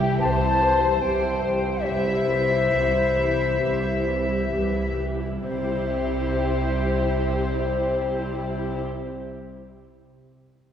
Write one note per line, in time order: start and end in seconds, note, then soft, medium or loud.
0.00 0.12 C2 medium
0.00 2.36 C3 soft
0.00 0.21 G3 soft
0.00 2.45 E4 soft
0.00 0.21 E4 soft
0.00 0.21 G4 medium
0.00 0.22 G4 medium
0.20 0.93 C2 medium
0.20 0.40 E3 soft
0.20 0.40 G4 soft
0.20 1.01 C5 medium
0.20 1.86 C5 medium
0.20 1.03 A5 medium
0.41 0.61 G3 soft
0.41 0.61 E4 soft
0.61 0.81 E3 soft
0.61 0.81 G4 soft
0.82 1.02 G3 soft
0.82 1.02 E4 soft
1.02 1.76 C2 medium
1.02 1.21 E3 soft
1.02 1.21 G4 soft
1.02 1.84 C5 soft
1.02 1.86 G5 medium
1.22 1.43 G3 soft
1.22 1.43 E4 soft
1.43 1.64 E3 soft
1.43 1.64 G4 soft
1.65 1.86 G3 soft
1.65 1.86 E4 soft
1.85 2.62 C2 medium
1.85 2.63 C2 medium
1.85 2.06 E3 soft
1.85 4.48 E4 medium
1.85 2.06 G4 soft
1.85 4.51 C5 medium
1.85 4.94 E5 medium
2.07 2.28 G3 soft
2.07 2.28 E4 soft
2.29 2.50 E3 soft
2.29 2.50 G4 soft
2.51 2.72 G3 soft
2.51 2.72 E4 soft
2.72 3.50 C2 medium
2.72 3.50 C2 soft
2.72 2.93 E3 soft
2.72 2.92 G4 soft
2.94 3.16 G3 soft
2.94 3.16 E4 soft
3.16 3.38 E3 soft
3.16 3.38 G4 soft
3.37 3.60 G3 soft
3.37 3.60 E4 soft
3.60 4.41 C2 soft
3.60 3.81 E3 soft
3.60 3.81 G4 soft
3.83 4.06 G3 soft
3.83 4.06 E4 soft
4.06 4.29 E3 soft
4.06 4.29 G4 soft
4.28 4.51 G3 soft
4.28 4.51 E4 soft
4.50 5.33 C2 soft
4.50 5.33 C2 medium
4.50 4.72 E3 soft
4.50 4.72 G4 soft
4.74 4.98 G3 soft
4.74 4.97 E4 soft
4.96 5.20 E3 soft
4.96 5.20 G4 soft
5.19 5.41 G3 soft
5.19 5.41 E4 soft
5.42 8.84 C2 medium
5.42 9.33 C3 soft
5.42 8.83 C3 medium
5.42 8.82 G3 soft
5.42 8.82 E4 soft
5.42 8.84 G4 medium
5.42 8.83 C5 medium
5.42 8.84 C5 medium
5.50 8.91 C4 soft
5.57 8.98 E4 soft
5.64 9.04 G4 soft
5.71 9.11 E5 soft